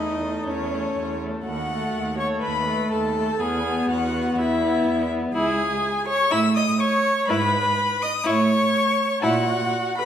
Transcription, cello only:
0, 0, Header, 1, 2, 480
1, 0, Start_track
1, 0, Key_signature, 4, "major"
1, 0, Tempo, 487013
1, 1435, Time_signature, 4, 2, 24, 8
1, 9907, End_track
2, 0, Start_track
2, 0, Title_t, "Cello"
2, 0, Program_c, 0, 42
2, 0, Note_on_c, 0, 40, 36
2, 410, Note_off_c, 0, 40, 0
2, 468, Note_on_c, 0, 40, 43
2, 895, Note_off_c, 0, 40, 0
2, 952, Note_on_c, 0, 40, 42
2, 1378, Note_off_c, 0, 40, 0
2, 1438, Note_on_c, 0, 39, 43
2, 1862, Note_off_c, 0, 39, 0
2, 1912, Note_on_c, 0, 39, 41
2, 2338, Note_off_c, 0, 39, 0
2, 2403, Note_on_c, 0, 39, 46
2, 2820, Note_off_c, 0, 39, 0
2, 2871, Note_on_c, 0, 39, 45
2, 3296, Note_off_c, 0, 39, 0
2, 3359, Note_on_c, 0, 40, 51
2, 3782, Note_off_c, 0, 40, 0
2, 3834, Note_on_c, 0, 40, 49
2, 4259, Note_off_c, 0, 40, 0
2, 4312, Note_on_c, 0, 40, 50
2, 4736, Note_off_c, 0, 40, 0
2, 4792, Note_on_c, 0, 40, 51
2, 5212, Note_off_c, 0, 40, 0
2, 5264, Note_on_c, 0, 37, 57
2, 5664, Note_off_c, 0, 37, 0
2, 6224, Note_on_c, 0, 45, 67
2, 6621, Note_off_c, 0, 45, 0
2, 7174, Note_on_c, 0, 44, 67
2, 7576, Note_off_c, 0, 44, 0
2, 8142, Note_on_c, 0, 45, 70
2, 8540, Note_off_c, 0, 45, 0
2, 9098, Note_on_c, 0, 46, 67
2, 9501, Note_off_c, 0, 46, 0
2, 9907, End_track
0, 0, End_of_file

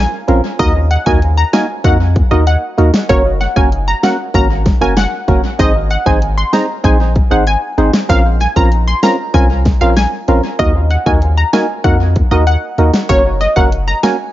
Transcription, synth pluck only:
0, 0, Header, 1, 2, 480
1, 0, Start_track
1, 0, Tempo, 625000
1, 457, Time_signature, 4, 2, 24, 8
1, 11002, End_track
2, 0, Start_track
2, 0, Title_t, "Synth pluck"
2, 0, Program_c, 0, 84
2, 0, Note_on_c, 0, 80, 86
2, 316, Note_off_c, 0, 80, 0
2, 455, Note_on_c, 0, 75, 110
2, 556, Note_off_c, 0, 75, 0
2, 697, Note_on_c, 0, 78, 79
2, 797, Note_off_c, 0, 78, 0
2, 815, Note_on_c, 0, 80, 82
2, 916, Note_off_c, 0, 80, 0
2, 1056, Note_on_c, 0, 82, 80
2, 1157, Note_off_c, 0, 82, 0
2, 1176, Note_on_c, 0, 80, 82
2, 1277, Note_off_c, 0, 80, 0
2, 1417, Note_on_c, 0, 78, 88
2, 1517, Note_off_c, 0, 78, 0
2, 1774, Note_on_c, 0, 75, 75
2, 1876, Note_off_c, 0, 75, 0
2, 1897, Note_on_c, 0, 78, 84
2, 2235, Note_off_c, 0, 78, 0
2, 2375, Note_on_c, 0, 73, 101
2, 2476, Note_off_c, 0, 73, 0
2, 2616, Note_on_c, 0, 78, 76
2, 2717, Note_off_c, 0, 78, 0
2, 2736, Note_on_c, 0, 80, 81
2, 2837, Note_off_c, 0, 80, 0
2, 2978, Note_on_c, 0, 82, 81
2, 3078, Note_off_c, 0, 82, 0
2, 3099, Note_on_c, 0, 78, 82
2, 3199, Note_off_c, 0, 78, 0
2, 3340, Note_on_c, 0, 82, 92
2, 3439, Note_off_c, 0, 82, 0
2, 3698, Note_on_c, 0, 80, 78
2, 3798, Note_off_c, 0, 80, 0
2, 3819, Note_on_c, 0, 78, 85
2, 4157, Note_off_c, 0, 78, 0
2, 4298, Note_on_c, 0, 75, 102
2, 4398, Note_off_c, 0, 75, 0
2, 4536, Note_on_c, 0, 78, 79
2, 4637, Note_off_c, 0, 78, 0
2, 4655, Note_on_c, 0, 80, 78
2, 4757, Note_off_c, 0, 80, 0
2, 4896, Note_on_c, 0, 84, 80
2, 4997, Note_off_c, 0, 84, 0
2, 5017, Note_on_c, 0, 82, 81
2, 5117, Note_off_c, 0, 82, 0
2, 5257, Note_on_c, 0, 80, 91
2, 5357, Note_off_c, 0, 80, 0
2, 5616, Note_on_c, 0, 78, 75
2, 5717, Note_off_c, 0, 78, 0
2, 5738, Note_on_c, 0, 80, 84
2, 6076, Note_off_c, 0, 80, 0
2, 6218, Note_on_c, 0, 77, 106
2, 6318, Note_off_c, 0, 77, 0
2, 6457, Note_on_c, 0, 80, 78
2, 6558, Note_off_c, 0, 80, 0
2, 6578, Note_on_c, 0, 82, 81
2, 6678, Note_off_c, 0, 82, 0
2, 6816, Note_on_c, 0, 84, 74
2, 6917, Note_off_c, 0, 84, 0
2, 6935, Note_on_c, 0, 82, 83
2, 7037, Note_off_c, 0, 82, 0
2, 7174, Note_on_c, 0, 80, 89
2, 7276, Note_off_c, 0, 80, 0
2, 7534, Note_on_c, 0, 77, 78
2, 7636, Note_off_c, 0, 77, 0
2, 7654, Note_on_c, 0, 80, 88
2, 7994, Note_off_c, 0, 80, 0
2, 8133, Note_on_c, 0, 75, 107
2, 8235, Note_off_c, 0, 75, 0
2, 8376, Note_on_c, 0, 78, 76
2, 8477, Note_off_c, 0, 78, 0
2, 8496, Note_on_c, 0, 80, 83
2, 8597, Note_off_c, 0, 80, 0
2, 8736, Note_on_c, 0, 82, 79
2, 8837, Note_off_c, 0, 82, 0
2, 8856, Note_on_c, 0, 80, 86
2, 8957, Note_off_c, 0, 80, 0
2, 9095, Note_on_c, 0, 78, 89
2, 9196, Note_off_c, 0, 78, 0
2, 9456, Note_on_c, 0, 75, 78
2, 9557, Note_off_c, 0, 75, 0
2, 9576, Note_on_c, 0, 78, 86
2, 9915, Note_off_c, 0, 78, 0
2, 10054, Note_on_c, 0, 73, 102
2, 10156, Note_off_c, 0, 73, 0
2, 10296, Note_on_c, 0, 75, 79
2, 10397, Note_off_c, 0, 75, 0
2, 10414, Note_on_c, 0, 78, 80
2, 10516, Note_off_c, 0, 78, 0
2, 10657, Note_on_c, 0, 82, 78
2, 10757, Note_off_c, 0, 82, 0
2, 10777, Note_on_c, 0, 80, 79
2, 10877, Note_off_c, 0, 80, 0
2, 11002, End_track
0, 0, End_of_file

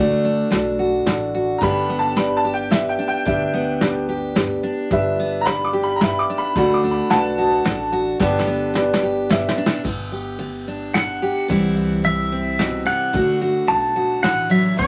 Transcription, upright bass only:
0, 0, Header, 1, 2, 480
1, 0, Start_track
1, 0, Key_signature, 1, "major"
1, 0, Tempo, 548948
1, 1417, Time_signature, 3, 2, 24, 8
1, 13003, End_track
2, 0, Start_track
2, 0, Title_t, "Upright bass"
2, 0, Program_c, 0, 32
2, 0, Note_on_c, 0, 38, 89
2, 359, Note_off_c, 0, 38, 0
2, 454, Note_on_c, 0, 35, 82
2, 863, Note_off_c, 0, 35, 0
2, 931, Note_on_c, 0, 33, 74
2, 1341, Note_off_c, 0, 33, 0
2, 1413, Note_on_c, 0, 31, 84
2, 2570, Note_off_c, 0, 31, 0
2, 2854, Note_on_c, 0, 38, 80
2, 4010, Note_off_c, 0, 38, 0
2, 4292, Note_on_c, 0, 31, 89
2, 5448, Note_off_c, 0, 31, 0
2, 5734, Note_on_c, 0, 38, 91
2, 6119, Note_off_c, 0, 38, 0
2, 6211, Note_on_c, 0, 35, 78
2, 6619, Note_off_c, 0, 35, 0
2, 6696, Note_on_c, 0, 33, 82
2, 7102, Note_off_c, 0, 33, 0
2, 7174, Note_on_c, 0, 31, 97
2, 8328, Note_off_c, 0, 31, 0
2, 8613, Note_on_c, 0, 31, 81
2, 9768, Note_off_c, 0, 31, 0
2, 10052, Note_on_c, 0, 36, 85
2, 11208, Note_off_c, 0, 36, 0
2, 11491, Note_on_c, 0, 38, 84
2, 11876, Note_off_c, 0, 38, 0
2, 11971, Note_on_c, 0, 35, 77
2, 12379, Note_off_c, 0, 35, 0
2, 12448, Note_on_c, 0, 33, 78
2, 12858, Note_off_c, 0, 33, 0
2, 12930, Note_on_c, 0, 31, 82
2, 13003, Note_off_c, 0, 31, 0
2, 13003, End_track
0, 0, End_of_file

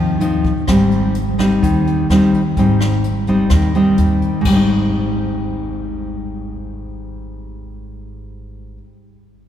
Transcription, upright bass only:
0, 0, Header, 1, 2, 480
1, 0, Start_track
1, 0, Key_signature, -4, "major"
1, 0, Tempo, 472069
1, 689, Time_signature, 4, 2, 24, 8
1, 9644, End_track
2, 0, Start_track
2, 0, Title_t, "Upright bass"
2, 0, Program_c, 0, 32
2, 0, Note_on_c, 0, 39, 96
2, 647, Note_off_c, 0, 39, 0
2, 690, Note_on_c, 0, 32, 87
2, 1607, Note_off_c, 0, 32, 0
2, 1656, Note_on_c, 0, 39, 87
2, 2098, Note_off_c, 0, 39, 0
2, 2131, Note_on_c, 0, 39, 86
2, 2352, Note_off_c, 0, 39, 0
2, 2614, Note_on_c, 0, 32, 88
2, 3529, Note_off_c, 0, 32, 0
2, 3564, Note_on_c, 0, 39, 86
2, 4011, Note_off_c, 0, 39, 0
2, 4047, Note_on_c, 0, 39, 81
2, 4270, Note_off_c, 0, 39, 0
2, 4526, Note_on_c, 0, 32, 79
2, 8923, Note_off_c, 0, 32, 0
2, 9644, End_track
0, 0, End_of_file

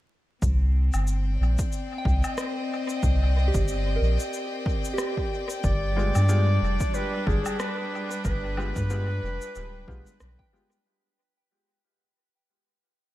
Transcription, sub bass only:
0, 0, Header, 1, 2, 480
1, 0, Start_track
1, 0, Key_signature, -3, "minor"
1, 0, Tempo, 652174
1, 311, Time_signature, 4, 2, 24, 8
1, 9678, End_track
2, 0, Start_track
2, 0, Title_t, "Sub bass"
2, 0, Program_c, 0, 38
2, 310, Note_on_c, 0, 36, 94
2, 662, Note_off_c, 0, 36, 0
2, 690, Note_on_c, 0, 31, 81
2, 1012, Note_off_c, 0, 31, 0
2, 1033, Note_on_c, 0, 34, 95
2, 1154, Note_off_c, 0, 34, 0
2, 1512, Note_on_c, 0, 36, 87
2, 1633, Note_off_c, 0, 36, 0
2, 2231, Note_on_c, 0, 36, 96
2, 2583, Note_off_c, 0, 36, 0
2, 2610, Note_on_c, 0, 31, 83
2, 2931, Note_off_c, 0, 31, 0
2, 2952, Note_on_c, 0, 34, 95
2, 3074, Note_off_c, 0, 34, 0
2, 4150, Note_on_c, 0, 31, 96
2, 4503, Note_off_c, 0, 31, 0
2, 4529, Note_on_c, 0, 43, 82
2, 4851, Note_off_c, 0, 43, 0
2, 4870, Note_on_c, 0, 29, 96
2, 4993, Note_off_c, 0, 29, 0
2, 5351, Note_on_c, 0, 31, 92
2, 5473, Note_off_c, 0, 31, 0
2, 6071, Note_on_c, 0, 31, 95
2, 6423, Note_off_c, 0, 31, 0
2, 6449, Note_on_c, 0, 43, 84
2, 6771, Note_off_c, 0, 43, 0
2, 6791, Note_on_c, 0, 29, 98
2, 6913, Note_off_c, 0, 29, 0
2, 7033, Note_on_c, 0, 26, 96
2, 7247, Note_off_c, 0, 26, 0
2, 7272, Note_on_c, 0, 35, 93
2, 7393, Note_off_c, 0, 35, 0
2, 7513, Note_on_c, 0, 35, 94
2, 7634, Note_off_c, 0, 35, 0
2, 9678, End_track
0, 0, End_of_file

